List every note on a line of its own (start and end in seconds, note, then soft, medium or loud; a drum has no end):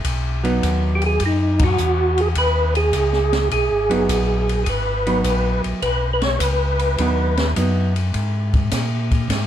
0.04 0.61 B1 medium
0.04 kick soft
0.04 ride medium
0.44 1.17 F#3 medium
0.44 1.17 B3 medium
0.44 1.18 D#4 medium
0.44 ride soft
0.63 1.19 D#2 medium
0.63 kick soft
0.63 hi-hat pedal soft
0.63 ride medium
0.95 1.04 G4 medium
1.02 ride soft
1.06 1.23 G#4 medium
1.20 1.77 F#2 medium
1.20 kick soft
1.20 ride medium
1.26 1.64 D#4 medium
1.59 kick medium
1.59 ride medium
1.64 2.22 F#4 loud
1.78 2.35 E2 medium
1.78 hi-hat pedal medium
2.18 2.28 G#4 loud
2.18 ride soft
2.35 2.92 D#2 medium
2.35 2.74 B4 loud
2.35 kick soft
2.35 ride medium
2.75 3.49 G#4 loud
2.75 ride soft
2.93 3.50 C#2 medium
2.93 kick soft
2.93 hi-hat pedal soft
2.93 ride medium
3.13 snare soft
3.33 snare soft
3.33 ride soft
3.51 3.70 B1 medium
3.51 4.63 G#4 medium
3.51 kick soft
3.51 ride medium
3.71 3.91 G#1 medium
3.90 4.09 F#1 medium
3.90 4.63 F#3 medium
3.90 4.64 B3 medium
3.90 4.64 D#4 medium
3.90 ride soft
4.09 4.66 A#1 medium
4.09 kick soft
4.09 hi-hat pedal medium
4.09 ride medium
4.49 ride soft
4.64 5.23 G#1 medium
4.64 4.68 G#4 medium
4.64 kick soft
4.64 ride medium
4.69 5.62 B4 medium
5.07 5.79 F#3 medium
5.07 5.80 B3 medium
5.07 5.80 D#4 medium
5.07 ride soft
5.24 5.62 A#1 medium
5.24 kick soft
5.24 hi-hat pedal soft
5.24 ride medium
5.64 5.74 A#1 soft
5.64 ride soft
5.82 6.39 B1 medium
5.82 6.11 B4 loud
5.82 kick soft
5.82 ride medium
6.13 6.23 B4 medium
6.22 6.39 C#5 loud
6.22 snare soft
6.22 ride soft
6.39 6.96 C#2 medium
6.39 7.52 B4 medium
6.39 kick soft
6.39 hi-hat pedal medium
6.39 ride medium
6.79 ride soft
6.98 7.54 D#2 medium
6.98 7.34 F#3 medium
6.98 7.35 B3 medium
6.98 7.35 D#4 medium
6.98 kick soft
6.98 ride medium
7.37 snare soft
7.37 ride soft
7.56 8.13 F#2 medium
7.56 7.92 F#3 soft
7.56 7.93 B3 medium
7.56 7.93 D#4 medium
7.56 kick soft
7.56 hi-hat pedal soft
7.56 ride medium
7.96 ride soft
8.14 8.70 G#2 medium
8.14 kick soft
8.14 ride medium
8.54 kick medium
8.54 ride soft
8.71 9.28 A#2 medium
8.71 kick soft
8.71 snare soft
8.71 hi-hat pedal medium
8.71 ride medium
9.11 kick medium
9.11 ride soft
9.29 9.47 G#2 medium
9.29 kick soft
9.29 snare soft
9.29 ride medium